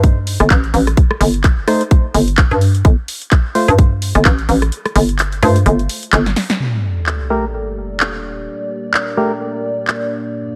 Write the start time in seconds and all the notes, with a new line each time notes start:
Already playing: G2
0.04 kick, closed hi-hat
0.27 open hi-hat
0.40 G1, cross-stick, closed hi-hat
0.50 A1, kick, clap, closed hi-hat
0.64 closed hi-hat
0.74 A1, open hi-hat
0.87 cross-stick, closed hi-hat
0.97 kick, closed hi-hat
1.11 cross-stick
1.21 G1, open hi-hat
1.34 closed hi-hat
1.44 kick, clap, closed hi-hat
1.68 A3 D#4 C5, cross-stick, open hi-hat
1.81 closed hi-hat
1.91 kick, closed hi-hat
2.14 G1, open hi-hat
2.28 closed hi-hat
2.38 kick, clap, closed hi-hat
2.51 G2, closed hi-hat
2.61 open hi-hat
2.75 closed hi-hat
2.85 G1, kick, closed hi-hat
3.08 open hi-hat
3.22 closed hi-hat
3.31 kick, clap, closed hi-hat
3.55 A3 F4 C5, open hi-hat
3.68 G2, closed hi-hat
3.79 kick, closed hi-hat
4.02 open hi-hat
4.15 G1, cross-stick, closed hi-hat
4.25 A1, kick, clap, closed hi-hat
4.39 closed hi-hat
4.49 A1, open hi-hat
4.62 cross-stick, closed hi-hat
4.72 closed hi-hat
4.85 cross-stick, closed hi-hat
4.96 G1, open hi-hat
5.09 closed hi-hat
5.19 clap, closed hi-hat
5.32 closed hi-hat
5.43 G2 A3 F4 C5, cross-stick, open hi-hat
5.56 closed hi-hat
5.66 G1, closed hi-hat
5.79 closed hi-hat
5.89 open hi-hat
6.03 closed hi-hat
6.13 G1, clap, closed hi-hat
6.26 snare, closed hi-hat
6.36 snare, open hi-hat
6.50 snare, closed hi-hat
6.60 A#3 G4 A4 D5, sub drop
7.06 clap
7.30 A3 G4 A#4
8.00 clap
8.47 A#4
8.94 clap
9.17 A3 G4 A#4
9.88 clap
10.35 G2 D4 F4